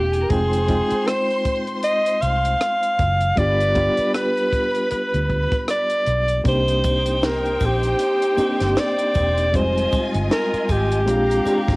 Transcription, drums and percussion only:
0.13 closed hi-hat
0.30 kick, closed hi-hat
0.53 closed hi-hat
0.68 kick, closed hi-hat
0.90 closed hi-hat
1.08 cross-stick, closed hi-hat
1.30 closed hi-hat
1.45 kick, closed hi-hat
1.67 closed hi-hat
1.83 closed hi-hat
2.06 closed hi-hat
2.22 closed hi-hat
2.45 closed hi-hat
2.61 cross-stick, closed hi-hat
2.83 closed hi-hat
2.99 kick, cross-stick, closed hi-hat
3.21 closed hi-hat
3.37 kick, closed hi-hat
3.61 closed hi-hat
3.76 kick, closed hi-hat
3.98 closed hi-hat
4.15 cross-stick, closed hi-hat
4.37 closed hi-hat
4.53 kick, closed hi-hat
4.75 closed hi-hat
4.91 closed hi-hat
5.14 closed hi-hat
5.30 kick, closed hi-hat
5.52 kick, cross-stick, closed hi-hat
5.68 cross-stick, closed hi-hat
5.90 closed hi-hat
6.07 closed hi-hat
6.28 closed hi-hat
6.45 kick, closed hi-hat, muted triangle
6.68 closed hi-hat, muted triangle
6.84 kick, closed hi-hat, triangle
7.06 closed hi-hat, muted triangle
7.22 snare, closed hi-hat, muted triangle
7.46 closed hi-hat, muted triangle
7.60 kick, closed hi-hat, triangle
7.83 closed hi-hat, muted triangle
7.99 closed hi-hat, muted triangle
8.22 closed hi-hat, muted triangle
8.38 closed hi-hat, triangle
8.60 snare, closed hi-hat, muted triangle
8.76 snare, closed hi-hat, muted triangle
8.98 closed hi-hat, muted triangle
9.14 kick, closed hi-hat, triangle
9.37 closed hi-hat, muted triangle
9.53 kick, closed hi-hat, muted triangle
9.76 closed hi-hat, muted triangle
9.92 kick, closed hi-hat, triangle
10.14 closed hi-hat, muted triangle
10.30 snare, closed hi-hat, muted triangle
10.54 closed hi-hat, muted triangle
10.69 kick, closed hi-hat, triangle
10.91 closed hi-hat, muted triangle
11.07 closed hi-hat, muted triangle
11.30 closed hi-hat, muted triangle
11.46 closed hi-hat, triangle
11.68 kick, snare, closed hi-hat, muted triangle

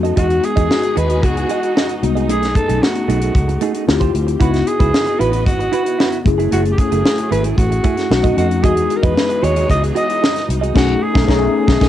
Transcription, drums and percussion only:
0.04 closed hi-hat
0.17 kick, closed hi-hat
0.30 closed hi-hat
0.43 closed hi-hat
0.57 kick, closed hi-hat
0.71 snare
0.83 closed hi-hat
0.97 closed hi-hat
1.09 closed hi-hat
1.23 kick, closed hi-hat
1.37 closed hi-hat
1.49 closed hi-hat
1.63 closed hi-hat
1.77 snare
1.89 closed hi-hat
2.03 closed hi-hat
2.16 closed hi-hat
2.29 closed hi-hat
2.42 snare, closed hi-hat
2.55 kick, closed hi-hat
2.69 closed hi-hat
2.83 snare
2.95 closed hi-hat
3.09 closed hi-hat
3.21 closed hi-hat
3.35 kick, closed hi-hat
3.49 closed hi-hat
3.61 closed hi-hat
3.74 closed hi-hat
3.89 snare
4.00 kick, closed hi-hat
4.15 closed hi-hat
4.28 closed hi-hat
4.41 kick, closed hi-hat
4.54 snare, closed hi-hat
4.67 closed hi-hat
4.80 kick, closed hi-hat
4.94 snare
5.07 closed hi-hat
5.21 closed hi-hat
5.33 closed hi-hat
5.46 kick, closed hi-hat
5.60 closed hi-hat
5.72 closed hi-hat
5.86 closed hi-hat
6.00 snare
6.12 closed hi-hat
6.26 kick, closed hi-hat
6.39 closed hi-hat
6.52 closed hi-hat
6.65 closed hi-hat
6.78 kick, closed hi-hat
6.92 closed hi-hat
7.06 snare
7.18 closed hi-hat
7.32 closed hi-hat
7.44 closed hi-hat
7.58 kick, closed hi-hat
7.72 closed hi-hat
7.84 kick, closed hi-hat
7.97 snare, closed hi-hat
8.12 snare
8.23 kick, closed hi-hat
8.38 closed hi-hat
8.51 closed hi-hat
8.64 kick, closed hi-hat
8.77 closed hi-hat
8.90 closed hi-hat
9.03 kick, closed hi-hat
9.17 snare
9.30 closed hi-hat
9.44 closed hi-hat
9.56 closed hi-hat
9.70 kick, closed hi-hat
9.83 closed hi-hat
9.96 closed hi-hat
10.09 closed hi-hat
10.24 snare
10.36 snare, closed hi-hat
10.50 closed hi-hat
10.63 closed hi-hat
10.75 kick, snare, crash
11.15 kick, snare
11.28 kick, snare
11.68 kick, snare
11.81 kick, snare, crash

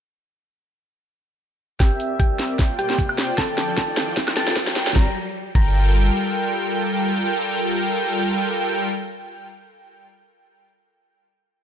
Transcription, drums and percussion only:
1.80 kick, snare, closed hi-hat
2.00 closed hi-hat
2.20 kick, closed hi-hat
2.39 snare, closed hi-hat
2.59 kick, snare, closed hi-hat
2.79 closed hi-hat
2.90 snare
2.98 kick, closed hi-hat
3.09 high woodblock
3.18 snare, closed hi-hat
3.38 kick, snare, closed hi-hat
3.58 snare, closed hi-hat
3.77 kick, snare, closed hi-hat
3.97 snare, closed hi-hat
4.17 kick, snare, closed hi-hat
4.28 snare, high woodblock
4.37 snare, closed hi-hat
4.47 snare
4.56 kick, snare, closed hi-hat
4.67 snare
4.76 snare, closed hi-hat
4.87 snare
4.96 kick, snare
5.55 kick, crash

